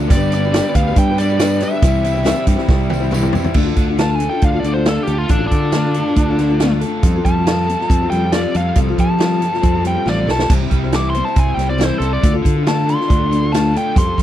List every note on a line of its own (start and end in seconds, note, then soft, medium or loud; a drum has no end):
0.00 0.12 D2 medium
0.00 0.12 F4 soft
0.00 0.11 A4 medium
0.00 tambourine soft
0.05 0.49 G2 medium
0.05 0.50 D3 medium
0.05 0.31 G3 medium
0.05 0.30 B3 loud
0.05 0.12 D4 soft
0.09 0.59 G1 loud
0.09 0.29 D4 loud
0.09 0.29 G4 loud
0.09 0.33 D5 loud
0.09 kick loud
0.09 closed hi-hat loud
0.09 tambourine medium
0.15 0.34 G3 medium
0.15 0.34 D4 medium
0.15 0.34 G4 medium
0.15 0.34 B4 loud
0.29 0.51 G3 medium
0.29 0.51 B3 medium
0.29 0.52 D4 medium
0.29 0.53 G4 medium
0.29 closed hi-hat medium
0.29 tambourine medium
0.34 0.44 G3 medium
0.34 0.44 D4 medium
0.34 0.45 G4 medium
0.34 0.44 B4 medium
0.34 0.75 D5 medium
0.45 0.56 D4 soft
0.45 0.55 G4 medium
0.45 0.54 B4 soft
0.45 tambourine soft
0.51 0.95 G2 medium
0.51 0.95 D3 loud
0.51 0.76 G3 loud
0.51 0.74 B3 loud
0.51 0.73 D4 loud
0.51 0.74 G4 loud
0.51 snare loud
0.51 closed hi-hat medium
0.56 0.65 G3 medium
0.56 0.66 D4 medium
0.56 0.66 G4 medium
0.56 0.66 B4 medium
0.56 tambourine loud
0.69 0.89 D4 soft
0.69 0.88 G4 soft
0.69 0.87 B4 medium
0.74 0.91 D2 medium
0.74 1.19 G3 medium
0.74 1.18 B3 medium
0.74 1.18 D4 medium
0.74 1.17 G4 medium
0.74 0.95 F5 loud
0.74 kick medium
0.74 closed hi-hat medium
0.74 tambourine soft
0.88 1.10 G4 soft
0.88 1.09 B4 medium
0.88 tambourine soft
0.92 1.10 D4 soft
0.92 closed hi-hat loud
0.96 1.62 G2 loud
0.96 1.20 G5 loud
0.96 kick loud
0.96 tambourine soft
1.11 1.20 D4 soft
1.11 1.21 G4 soft
1.11 1.20 B4 medium
1.18 1.37 G3 medium
1.18 1.30 G3 medium
1.18 1.38 B3 medium
1.18 1.39 D4 medium
1.18 1.30 D4 medium
1.18 1.39 G4 medium
1.18 1.31 G4 medium
1.18 1.63 D5 medium
1.18 closed hi-hat medium
1.18 tambourine medium
1.23 1.30 B4 medium
1.30 1.40 D4 soft
1.30 1.41 G4 soft
1.30 1.41 B4 medium
1.30 tambourine soft
1.38 1.81 G3 medium
1.38 1.59 G3 medium
1.38 1.81 B3 medium
1.38 1.82 D4 medium
1.38 1.60 D4 loud
1.38 1.82 G4 medium
1.38 1.61 G4 medium
1.38 1.61 B4 loud
1.38 snare loud
1.38 closed hi-hat medium
1.38 tambourine loud
1.60 1.71 G3 medium
1.60 1.72 D4 medium
1.60 1.71 G4 medium
1.60 1.71 B4 medium
1.60 2.45 E5 medium
1.60 closed hi-hat medium
1.60 tambourine medium
1.72 1.84 D4 soft
1.72 1.83 G4 soft
1.72 1.83 B4 soft
1.72 tambourine soft
1.82 2.32 C2 medium
1.82 2.25 C3 loud
1.82 2.04 C3 medium
1.82 2.26 E3 loud
1.82 2.05 E3 medium
1.82 2.05 G3 loud
1.82 2.02 G3 medium
1.82 2.03 C4 medium
1.82 2.03 E4 medium
1.82 2.04 E4 loud
1.82 2.03 G4 loud
1.82 2.05 C5 medium
1.82 kick loud
1.82 closed hi-hat loud
1.82 tambourine medium
2.03 2.14 G3 medium
2.03 2.27 G3 medium
2.03 2.15 C4 medium
2.03 2.14 E4 medium
2.03 2.26 E4 medium
2.03 2.28 G4 medium
2.03 2.13 C5 medium
2.03 closed hi-hat medium
2.03 tambourine medium
2.14 2.24 G3 soft
2.14 2.23 C4 medium
2.14 2.24 E4 medium
2.14 2.25 C5 medium
2.14 tambourine soft
2.23 2.35 C3 medium
2.23 2.70 C3 loud
2.23 2.36 E3 medium
2.23 2.36 G3 loud
2.23 2.35 C4 loud
2.23 2.34 E4 medium
2.23 2.33 C5 loud
2.23 snare loud
2.23 closed hi-hat medium
2.23 tambourine medium
2.27 2.70 E3 medium
2.27 2.48 G3 loud
2.27 2.48 E4 loud
2.27 2.46 G4 loud
2.34 2.58 G3 soft
2.34 2.57 C4 soft
2.34 2.56 E4 medium
2.34 2.55 C5 medium
2.34 tambourine soft
2.47 2.56 G2 medium
2.47 2.91 G3 medium
2.47 2.90 E4 medium
2.47 2.89 G4 medium
2.47 kick medium
2.47 closed hi-hat medium
2.47 tambourine soft
2.56 2.80 G3 medium
2.56 2.79 C4 medium
2.56 2.78 E4 medium
2.56 2.77 C5 medium
2.56 snare soft
2.61 tambourine soft
2.68 3.35 C2 medium
2.68 kick loud
2.68 snare medium
2.68 tambourine soft
2.78 2.88 G3 medium
2.78 2.89 C4 soft
2.78 2.90 E4 medium
2.78 2.90 C5 medium
2.83 tambourine soft
2.89 3.01 G3 medium
2.89 3.12 G3 medium
2.89 3.02 C4 medium
2.89 3.13 E4 medium
2.89 3.00 E4 medium
2.89 3.14 G4 medium
2.89 2.99 C5 medium
2.89 high tom medium
2.89 tambourine medium
3.00 3.10 G3 soft
3.00 3.10 C4 medium
3.00 3.11 E4 soft
3.00 3.11 C5 medium
3.00 tambourine soft
3.11 3.33 C3 medium
3.11 3.34 E3 loud
3.11 3.55 E3 medium
3.11 3.33 G3 medium
3.11 3.55 G3 medium
3.11 3.33 C4 medium
3.11 3.34 E4 loud
3.11 3.56 E4 medium
3.11 3.34 C5 loud
3.11 mid tom medium
3.11 tambourine loud
3.15 3.56 G4 medium
3.22 mid tom medium
3.22 tambourine soft
3.33 3.45 G3 medium
3.33 3.45 C4 medium
3.33 3.44 E4 medium
3.33 3.43 C5 medium
3.33 floor tom medium
3.33 tambourine medium
3.44 3.54 G3 soft
3.44 3.55 C4 soft
3.44 3.55 E4 medium
3.44 3.55 C5 medium
3.44 floor tom medium
3.44 tambourine soft
3.54 3.72 D2 medium
3.54 3.66 D3 medium
3.54 3.76 D3 medium
3.54 3.66 A3 medium
3.54 3.66 D4 medium
3.54 3.64 F4 medium
3.54 3.63 A4 medium
3.54 kick loud
3.54 crash medium
3.64 3.89 D4 medium
3.64 3.88 F4 medium
3.64 3.86 A4 medium
3.76 4.27 D2 medium
3.76 4.64 D3 medium
3.76 kick medium
3.76 closed hi-hat medium
3.87 3.97 D4 soft
3.87 3.98 F4 soft
3.87 3.97 A4 medium
3.97 4.20 D3 medium
3.97 4.18 A3 medium
3.97 4.19 D4 medium
3.97 4.19 F4 medium
3.97 4.86 F4 medium
3.97 4.21 A4 medium
3.97 4.15 A5 medium
3.97 snare loud
3.97 closed hi-hat medium
4.15 4.31 A3 medium
4.15 4.29 G#5 medium
4.20 4.32 D4 medium
4.20 4.31 F4 medium
4.20 5.07 A4 medium
4.20 4.29 A4 medium
4.20 closed hi-hat medium
4.30 4.53 D4 soft
4.30 4.53 F4 soft
4.30 4.51 A4 medium
4.30 4.43 G5 medium
4.42 4.59 D2 medium
4.42 5.52 D4 medium
4.42 4.60 F5 medium
4.42 kick loud
4.42 closed hi-hat medium
4.52 4.61 D4 soft
4.52 4.63 F4 soft
4.52 4.64 A4 medium
4.60 4.97 D2 medium
4.60 4.75 A3 medium
4.60 4.75 D4 medium
4.60 4.73 D5 medium
4.64 5.27 D3 medium
4.64 4.74 F4 medium
4.64 4.73 A4 medium
4.64 closed hi-hat medium
4.74 4.85 D4 soft
4.74 4.86 F4 soft
4.74 4.86 A4 soft
4.74 4.87 C5 medium
4.86 5.08 D3 medium
4.86 5.05 A3 medium
4.86 5.06 D4 medium
4.86 5.72 F4 medium
4.86 5.06 F4 medium
4.86 5.07 A4 medium
4.86 5.03 A4 medium
4.86 snare loud
4.86 closed hi-hat medium
5.03 5.27 A3 medium
5.03 5.28 D4 medium
5.03 5.18 G4 medium
5.07 5.24 D2 medium
5.07 5.28 F4 soft
5.07 5.95 A4 medium
5.07 5.29 A4 medium
5.07 closed hi-hat medium
5.18 5.30 F4 medium
5.28 5.47 A1 medium
5.28 5.40 D3 medium
5.28 5.50 D3 medium
5.28 5.40 A3 medium
5.28 5.40 D4 medium
5.28 5.44 D4 medium
5.28 5.38 F4 medium
5.28 5.38 A4 medium
5.28 kick loud
5.28 closed hi-hat medium
5.39 5.63 D4 soft
5.39 5.62 F4 soft
5.39 5.60 A4 medium
5.47 6.37 D3 medium
5.47 6.72 D4 medium
5.47 kick medium
5.47 closed hi-hat medium
5.52 6.01 D3 medium
5.61 5.73 D4 soft
5.61 5.73 F4 soft
5.61 5.73 A4 soft
5.72 5.84 D3 medium
5.72 5.84 A3 medium
5.72 5.85 D4 medium
5.72 6.59 F4 medium
5.72 5.85 F4 medium
5.72 5.84 A4 medium
5.72 snare loud
5.72 closed hi-hat medium
5.85 5.97 D4 soft
5.85 5.96 F4 soft
5.85 5.96 A4 soft
5.94 6.07 A3 medium
5.94 6.07 D4 medium
5.94 6.08 F4 medium
5.94 6.81 A4 medium
5.94 closed hi-hat medium
5.99 6.06 A4 medium
6.07 6.30 D4 medium
6.07 6.29 F4 soft
6.07 6.27 A4 medium
6.16 6.82 D2 medium
6.16 7.03 D4 medium
6.16 kick medium
6.16 closed hi-hat medium
6.28 6.38 D4 soft
6.28 6.40 F4 medium
6.28 6.39 A4 medium
6.38 7.04 D3 medium
6.38 6.49 A3 medium
6.38 6.50 D4 medium
6.38 6.50 F4 medium
6.38 6.48 A4 medium
6.38 snare soft
6.38 closed hi-hat medium
6.49 6.61 D4 soft
6.49 6.61 F4 soft
6.49 6.60 A4 medium
6.59 6.83 D3 medium
6.59 6.81 A3 medium
6.59 6.82 D4 loud
6.59 7.28 F4 medium
6.59 6.83 F4 loud
6.59 snare loud
6.59 closed hi-hat medium
6.63 6.84 A4 loud
6.81 7.04 A3 medium
6.81 7.04 D4 medium
6.81 7.05 F4 medium
6.81 7.28 A4 medium
6.81 closed hi-hat medium
6.86 7.05 A4 medium
7.03 7.20 F2 medium
7.03 8.12 F3 medium
7.03 7.15 F3 medium
7.03 7.15 G3 medium
7.03 7.16 C4 medium
7.03 7.16 F4 medium
7.03 7.15 A4 medium
7.03 kick loud
7.03 closed hi-hat medium
7.16 7.38 C4 soft
7.16 7.37 F4 soft
7.16 7.36 A4 medium
7.25 7.75 F2 medium
7.25 8.10 G3 medium
7.25 8.09 A5 loud
7.25 kick medium
7.25 closed hi-hat medium
7.37 7.49 C4 soft
7.37 7.49 F4 soft
7.37 7.47 A4 medium
7.45 7.69 F3 medium
7.45 8.32 F4 medium
7.45 snare loud
7.45 closed hi-hat medium
7.49 7.68 G3 medium
7.49 7.68 C4 medium
7.49 7.70 F4 medium
7.49 7.70 A4 loud
7.67 7.80 G3 medium
7.67 7.80 C4 medium
7.67 7.80 F4 medium
7.67 8.54 A4 medium
7.67 closed hi-hat medium
7.71 7.78 A4 medium
7.80 8.03 C4 medium
7.80 8.02 F4 soft
7.80 8.01 A4 medium
7.80 snare soft
7.89 8.07 F2 medium
7.89 9.61 C4 medium
7.89 kick medium
7.89 closed hi-hat medium
8.02 8.12 C4 soft
8.02 8.13 F4 soft
8.02 8.12 A4 medium
8.10 8.45 F2 medium
8.10 8.98 G3 medium
8.10 8.23 G3 medium
8.10 8.24 C4 medium
8.10 8.32 G5 medium
8.10 closed hi-hat medium
8.15 8.24 F4 medium
8.15 8.23 A4 medium
8.24 8.35 C4 soft
8.24 8.35 F4 soft
8.24 8.34 A4 soft
8.32 8.56 F3 medium
8.32 8.55 G3 medium
8.32 8.57 C4 medium
8.32 9.19 F4 medium
8.32 8.57 F4 medium
8.32 8.57 A4 medium
8.32 8.54 D5 medium
8.32 snare loud
8.32 closed hi-hat medium
8.54 8.72 F2 medium
8.54 8.75 G3 medium
8.54 8.76 C4 medium
8.54 9.40 A4 medium
8.54 8.77 F5 medium
8.54 closed hi-hat medium
8.59 8.76 F4 medium
8.59 8.77 A4 medium
8.75 8.93 C2 medium
8.75 8.87 F3 medium
8.75 9.85 F3 medium
8.75 8.88 G3 medium
8.75 8.88 C4 medium
8.75 8.88 F4 medium
8.75 8.87 A4 medium
8.75 kick loud
8.75 closed hi-hat loud
8.88 9.08 C4 soft
8.88 9.08 F4 medium
8.88 9.06 A4 medium
8.98 9.48 F3 medium
8.98 9.82 G3 medium
8.98 9.84 A5 loud
8.98 kick medium
8.98 closed hi-hat medium
9.07 9.19 C4 soft
9.07 9.20 F4 soft
9.07 9.19 A4 soft
9.19 9.41 F3 medium
9.19 9.41 G3 medium
9.19 9.42 C4 medium
9.19 10.06 F4 medium
9.19 9.42 F4 medium
9.19 9.43 A4 medium
9.19 snare loud
9.19 closed hi-hat medium
9.41 9.53 G3 medium
9.41 9.53 C4 medium
9.41 9.52 F4 medium
9.41 10.25 A4 medium
9.41 closed hi-hat medium
9.45 9.51 A4 medium
9.52 9.76 C4 soft
9.52 9.74 F4 medium
9.52 9.74 A4 medium
9.52 snare soft
9.62 9.96 F2 medium
9.62 10.49 C4 medium
9.62 kick loud
9.62 closed hi-hat medium
9.75 9.85 C4 soft
9.75 9.86 F4 soft
9.75 9.85 A4 medium
9.83 10.49 G3 medium
9.83 9.96 G3 medium
9.83 9.96 C4 medium
9.83 closed hi-hat medium
9.87 9.95 F4 medium
9.87 9.93 A4 medium
9.87 10.07 G5 medium
9.94 10.06 C4 soft
9.94 10.07 F4 soft
9.94 10.06 A4 soft
10.06 10.26 A1 medium
10.06 10.28 F3 medium
10.06 10.26 G3 medium
10.06 10.27 C4 medium
10.06 10.50 F4 medium
10.06 10.28 F4 medium
10.06 10.28 A4 medium
10.06 10.29 D5 medium
10.06 snare medium
10.27 10.47 B1 medium
10.27 10.49 G3 soft
10.27 10.49 C4 medium
10.27 10.51 F4 medium
10.27 10.49 A4 medium
10.27 10.51 A4 medium
10.27 snare medium
10.31 10.51 A5 medium
10.39 snare medium
10.49 10.66 C2 medium
10.49 10.60 C3 medium
10.49 11.58 C3 medium
10.49 10.61 E3 medium
10.49 10.61 G3 medium
10.49 10.61 C4 medium
10.49 10.60 E4 medium
10.49 10.60 C5 medium
10.49 kick loud
10.49 closed hi-hat medium
10.49 crash medium
10.61 10.84 G3 medium
10.61 10.84 C4 medium
10.61 10.83 E4 medium
10.61 10.83 C5 medium
10.70 11.21 C2 medium
10.70 11.55 G3 medium
10.70 kick medium
10.70 closed hi-hat medium
10.84 10.94 G3 soft
10.84 10.93 C4 soft
10.84 10.94 E4 soft
10.84 10.94 C5 medium
10.92 11.15 C3 medium
10.92 11.16 E3 medium
10.92 11.14 G3 medium
10.92 11.16 C4 medium
10.92 11.78 E4 medium
10.92 11.16 E4 medium
10.92 11.16 C5 medium
10.92 11.09 D6 medium
10.92 snare loud
10.92 closed hi-hat medium
11.10 11.25 C6 medium
11.14 11.26 G3 medium
11.14 11.27 C4 medium
11.14 11.27 E4 medium
11.14 11.98 C5 medium
11.14 11.25 C5 medium
11.14 closed hi-hat medium
11.25 11.47 E4 medium
11.25 11.46 C5 soft
11.25 11.37 A5 medium
11.29 11.49 G3 soft
11.29 11.48 C4 medium
11.36 11.53 C2 medium
11.36 12.23 C4 medium
11.36 11.54 G#5 loud
11.36 kick loud
11.36 closed hi-hat medium
11.47 11.56 G3 soft
11.47 11.57 C4 soft
11.47 11.58 E4 soft
11.47 11.58 C5 medium
11.54 11.90 C2 medium
11.54 12.20 G3 medium
11.54 11.69 G3 medium
11.54 11.67 G5 medium
11.59 11.69 C4 medium
11.59 11.69 E4 medium
11.59 11.68 C5 medium
11.59 snare soft
11.59 closed hi-hat medium
11.69 11.77 G3 soft
11.69 11.78 C4 soft
11.69 11.79 E4 soft
11.69 11.78 C5 soft
11.69 11.84 D5 medium
11.78 12.01 C3 medium
11.78 12.01 E3 medium
11.78 11.99 G3 medium
11.78 12.00 C4 medium
11.78 12.23 E4 medium
11.78 12.01 E4 medium
11.78 12.01 C5 medium
11.78 snare loud
11.78 closed hi-hat loud
11.84 11.98 C5 medium
11.98 12.17 C2 medium
11.98 12.22 G3 medium
11.98 12.23 C4 medium
11.98 12.10 A4 medium
11.98 12.22 C5 medium
11.98 closed hi-hat medium
12.02 12.24 E4 medium
12.02 12.24 C5 medium
12.13 12.32 D5 medium
12.21 12.40 D2 medium
12.21 12.42 D3 medium
12.21 12.34 D3 medium
12.21 12.34 A3 medium
12.21 12.34 D4 medium
12.21 12.33 F4 medium
12.21 12.32 A4 medium
12.21 kick loud
12.21 closed hi-hat loud
12.34 12.56 D4 soft
12.34 12.55 F4 medium
12.34 12.55 A4 medium
12.43 13.29 D3 medium
12.43 12.94 D3 medium
12.43 kick medium
12.43 closed hi-hat medium
12.56 12.66 D4 soft
12.56 12.66 F4 soft
12.56 12.66 A4 medium
12.63 12.88 D3 medium
12.63 12.87 A3 medium
12.63 12.88 D4 medium
12.63 13.50 F4 medium
12.63 snare loud
12.63 closed hi-hat medium
12.68 12.89 F4 medium
12.68 12.89 A4 medium
12.68 12.88 A5 medium
12.86 12.99 A3 medium
12.86 12.99 D4 medium
12.86 13.00 F4 medium
12.86 13.73 A4 medium
12.86 closed hi-hat medium
12.90 12.97 A4 medium
12.90 13.52 C6 loud
12.98 13.21 D4 soft
12.98 13.20 F4 soft
12.98 13.19 A4 medium
12.98 snare soft
13.08 13.75 D2 medium
13.08 13.95 D4 medium
13.08 kick loud
13.08 closed hi-hat medium
13.20 13.30 D4 soft
13.20 13.31 F4 soft
13.20 13.31 A4 medium
13.30 13.95 D3 medium
13.30 13.42 A3 medium
13.30 13.42 D4 medium
13.30 13.42 F4 medium
13.30 13.41 A4 medium
13.30 closed hi-hat medium
13.42 13.53 D4 soft
13.42 13.53 F4 soft
13.42 13.53 A4 soft
13.51 13.74 D3 medium
13.51 13.73 A3 medium
13.51 13.74 D4 medium
13.51 13.95 F4 medium
13.51 13.74 F4 medium
13.51 13.75 A4 loud
13.51 13.74 A5 medium
13.51 snare loud
13.51 closed hi-hat medium
13.73 13.96 A3 medium
13.73 13.96 D4 medium
13.73 13.96 F4 medium
13.73 14.20 A4 medium
13.73 13.97 A4 medium
13.73 closed hi-hat medium
13.77 13.97 G5 medium
13.95 14.13 F2 loud
13.95 14.23 F3 medium
13.95 14.07 F3 medium
13.95 14.07 G3 medium
13.95 14.08 C4 medium
13.95 14.07 G4 medium
13.95 14.05 A4 medium
13.95 14.18 C6 loud
13.95 kick loud
13.95 closed hi-hat medium
14.06 14.23 C4 soft
14.06 14.23 G4 medium
14.06 14.23 A4 medium
14.17 14.23 F2 medium
14.17 14.23 G3 medium
14.17 kick medium
14.17 closed hi-hat medium